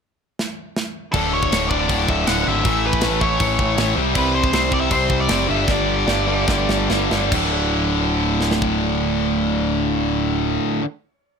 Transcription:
0.39 snare medium
0.76 snare medium
1.13 1.50 D1 medium
1.13 1.51 D2 loud
1.13 1.52 A2 loud
1.13 1.52 D3 loud
1.13 1.33 A4 medium
1.13 kick loud
1.13 crash medium
1.33 1.69 C#5 loud
1.43 kick medium
1.52 1.87 D1 medium
1.52 1.70 D2 medium
1.52 1.70 A2 medium
1.52 1.71 D3 medium
1.52 snare loud
1.52 crash medium
1.70 1.88 D2 medium
1.70 1.89 A2 medium
1.70 1.90 D3 medium
1.70 2.09 D5 loud
1.70 kick medium
1.89 2.07 D1 loud
1.89 2.26 D2 medium
1.89 2.26 A2 medium
1.89 2.27 D3 loud
1.89 kick loud
1.89 crash medium
2.08 2.26 D1 medium
2.08 2.27 E5 medium
2.08 kick medium
2.27 2.45 D1 medium
2.27 2.45 D2 medium
2.27 2.45 A2 medium
2.27 2.46 D3 medium
2.27 2.48 F#5 loud
2.27 snare loud
2.27 crash medium
2.46 2.64 G#1 medium
2.46 2.64 D2 medium
2.46 2.64 A2 medium
2.46 2.64 D3 medium
2.46 2.86 E5 loud
2.65 3.01 A1 loud
2.65 3.01 A2 loud
2.65 3.02 E3 loud
2.65 3.02 A3 medium
2.65 kick loud
2.65 crash medium
2.86 3.20 B4 medium
2.93 kick medium
3.01 3.38 A1 medium
3.01 3.20 A2 medium
3.01 3.20 E3 medium
3.01 3.21 A3 medium
3.01 snare loud
3.01 crash medium
3.21 3.39 A2 medium
3.21 3.39 E3 medium
3.21 3.39 A3 medium
3.21 3.93 C#5 loud
3.21 kick medium
3.40 3.58 A1 loud
3.40 3.76 A2 loud
3.40 3.77 E3 loud
3.40 3.77 A3 loud
3.40 kick loud
3.40 crash medium
3.59 3.77 A1 medium
3.59 kick medium
3.77 3.95 A1 medium
3.77 3.95 A2 medium
3.77 3.95 E3 medium
3.77 3.96 A3 medium
3.77 snare loud
3.77 crash medium
3.96 4.14 C2 medium
3.96 4.13 C3 medium
3.96 4.15 G3 loud
3.96 4.14 C4 loud
4.15 4.50 C2 loud
4.15 4.51 C3 medium
4.15 4.52 G3 loud
4.15 4.52 C4 loud
4.15 4.34 B4 medium
4.15 kick loud
4.15 crash medium
4.35 4.73 C5 loud
4.44 kick loud
4.52 4.88 C2 medium
4.52 4.70 C3 medium
4.52 4.71 G3 medium
4.52 4.71 C4 medium
4.52 snare loud
4.52 crash medium
4.71 4.89 C3 medium
4.71 4.89 G3 medium
4.71 4.89 C4 medium
4.71 4.80 D5 medium
4.71 kick medium
4.81 4.91 E5 medium
4.90 5.09 C2 loud
4.90 5.28 C3 medium
4.90 5.28 G3 loud
4.90 5.28 C4 loud
4.90 5.20 C5 medium
4.90 kick loud
4.90 crash medium
5.09 5.28 C2 medium
5.09 kick medium
5.20 5.47 D5 medium
5.29 5.48 F#1 medium
5.29 5.47 C3 medium
5.29 5.47 G3 loud
5.29 5.47 C4 medium
5.29 snare loud
5.29 crash medium
5.48 5.67 G1 medium
5.48 5.66 G2 medium
5.48 5.66 D3 loud
5.48 5.67 G3 loud
5.48 5.71 E5 medium
5.67 6.05 G1 loud
5.67 6.05 G2 loud
5.67 6.06 D3 loud
5.67 6.06 G3 loud
5.67 6.91 D5 medium
5.67 kick loud
5.67 snare medium
6.06 6.45 G1 loud
6.06 6.26 G2 medium
6.06 6.26 D3 medium
6.06 6.26 G3 medium
6.06 snare medium
6.27 6.47 G2 medium
6.27 6.47 D3 medium
6.27 6.48 G3 medium
6.48 6.67 G1 loud
6.48 6.88 G2 medium
6.48 6.88 D3 medium
6.48 6.88 G3 loud
6.48 kick loud
6.48 snare medium
6.68 6.88 G1 medium
6.68 snare medium
6.89 7.09 G1 medium
6.89 7.09 G2 medium
6.89 7.09 D3 medium
6.89 7.10 G3 medium
6.89 snare medium
7.11 7.31 G1 medium
7.11 7.30 G2 medium
7.11 7.31 D3 medium
7.11 7.31 G3 medium
7.11 snare medium
7.31 10.58 D1 medium
7.31 10.81 D2 medium
7.31 10.83 A2 medium
7.31 kick loud
7.31 crash medium
7.35 10.85 D3 loud
8.41 snare medium
8.51 snare medium
8.62 kick medium

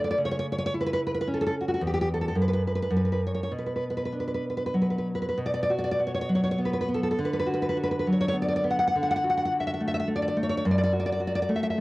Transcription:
0.00 0.13 D3 medium
0.00 0.18 A3 medium
0.04 0.09 D5 medium
0.11 0.17 D5 loud
0.18 1.77 C#3 medium
0.25 0.30 C#5 medium
0.31 0.38 C#5 loud
0.39 0.45 C#5 loud
0.52 0.57 C#5 medium
0.58 0.65 C#5 loud
0.66 0.72 C#5 loud
0.74 1.55 E4 medium
0.81 0.85 B4 medium
0.86 0.92 B4 medium
0.93 1.00 B4 loud
1.07 1.13 B4 medium
1.14 1.20 B4 medium
1.21 1.27 B4 loud
1.27 1.81 C#4 medium
1.34 1.40 A4 medium
1.41 1.45 A4 loud
1.46 1.53 A4 loud
1.60 1.67 F#4 medium
1.68 1.72 F#4 medium
1.74 1.81 F#4 medium
1.81 2.33 E2 medium
1.87 1.92 G4 medium
1.94 2.00 G4 medium
2.01 2.08 G4 loud
2.14 2.20 A4 medium
2.21 2.27 A4 medium
2.28 2.35 A4 medium
2.35 2.90 F#2 medium
2.42 2.47 B4 medium
2.48 2.52 B4 medium
2.53 2.61 B4 medium
2.68 2.74 B4 medium
2.76 2.81 B4 medium
2.83 2.90 B4 medium
2.91 3.49 F#2 medium
2.97 3.04 B4 medium
3.05 3.11 B4 medium
3.12 3.20 B4 medium
3.27 3.33 C#5 medium
3.35 3.42 C#5 medium
3.43 3.51 C#5 medium
3.51 5.35 B2 medium
3.58 3.65 B4 medium
3.66 3.75 B4 medium
3.76 3.83 B4 medium
3.90 3.96 B4 medium
3.97 4.04 B4 medium
4.05 4.13 B4 medium
4.12 5.07 D4 soft
4.20 4.26 B4 medium
4.27 4.33 B4 medium
4.34 4.44 B4 medium
4.50 4.56 B4 medium
4.57 4.65 B4 medium
4.66 4.75 B4 medium
4.74 5.38 F#3 medium
4.82 4.89 B4 medium
4.90 4.97 B4 medium
4.98 5.07 B4 medium
5.15 5.21 B4 medium
5.22 5.27 B4 medium
5.29 5.38 B4 medium
5.37 7.13 B2 medium
5.46 5.52 D5 medium
5.54 5.61 D5 loud
5.63 5.70 D5 loud
5.70 5.98 F#4 medium
5.79 5.83 D5 loud
5.84 5.90 D5 loud
5.91 6.00 D5 loud
5.99 6.88 F#4 medium
6.07 6.13 C#5 medium
6.15 6.20 C#5 medium
6.21 6.30 C#5 loud
6.29 7.17 F#3 medium
6.35 6.43 C#5 medium
6.44 6.50 C#5 medium
6.51 6.59 C#5 loud
6.58 6.87 B3 medium
6.65 6.72 B4 medium
6.73 6.80 B4 medium
6.81 6.89 B4 medium
6.89 7.18 B3 medium
6.94 7.02 A4 medium
7.03 7.10 A4 medium
7.11 7.18 A4 medium
7.19 8.90 D3 medium
7.25 7.32 B4 medium
7.33 7.38 B4 loud
7.40 7.47 B4 loud
7.46 7.76 F#4 medium
7.54 7.61 B4 medium
7.62 7.68 B4 medium
7.69 7.77 B4 medium
7.77 8.33 F#4 medium
7.84 7.90 B4 loud
7.91 7.98 B4 loud
7.99 8.06 B4 loud
8.07 8.94 F#3 medium
8.12 8.19 C#5 medium
8.21 8.27 C#5 loud
8.28 8.35 C#5 loud
8.33 8.63 B3 medium
8.42 8.47 D5 loud
8.49 8.55 D5 medium
8.56 8.64 D5 medium
8.64 8.94 B3 medium
8.71 8.78 F#5 medium
8.79 8.86 F#5 loud
8.88 8.94 F#5 loud
8.96 10.61 D3 medium
9.03 9.09 F#5 loud
9.11 9.15 F#5 loud
9.16 9.23 F#5 loud
9.24 9.50 F#4 medium
9.30 9.36 F#5 loud
9.37 9.44 F#5 loud
9.45 9.52 F#5 loud
9.51 10.36 F#4 medium
9.60 9.66 E5 loud
9.67 9.72 E5 loud
9.74 9.81 E5 loud
9.80 10.06 A3 medium
9.87 9.93 E5 loud
9.94 9.98 E5 loud
9.99 10.08 E5 loud
10.07 10.35 A3 medium
10.15 10.21 D5 loud
10.22 10.26 D5 loud
10.28 10.36 D5 loud
10.37 10.64 A3 medium
10.43 10.48 C#5 medium
10.49 10.56 C#5 loud
10.57 10.64 C#5 loud
10.65 11.80 F#2 medium
10.71 10.77 D5 loud
10.78 10.83 D5 loud
10.84 10.92 D5 loud
10.93 11.19 F#4 medium
11.00 11.05 D5 loud
11.06 11.11 D5 loud
11.13 11.20 D5 loud
11.20 11.80 F#4 medium
11.27 11.34 D5 loud
11.35 11.41 D5 loud
11.42 11.50 D5 loud
11.49 11.77 A3 medium
11.56 11.62 E5 medium
11.63 11.69 E5 loud
11.70 11.78 E5 loud

